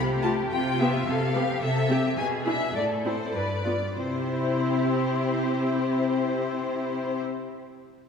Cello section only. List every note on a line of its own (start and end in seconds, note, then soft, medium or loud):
0.00 0.43 C3 soft
0.52 0.98 C3 medium
1.07 1.53 C3 soft
1.62 2.08 C3 soft
2.18 2.66 B2 soft
2.75 3.25 A2 soft
3.35 3.87 G2 soft
3.97 7.20 C3 soft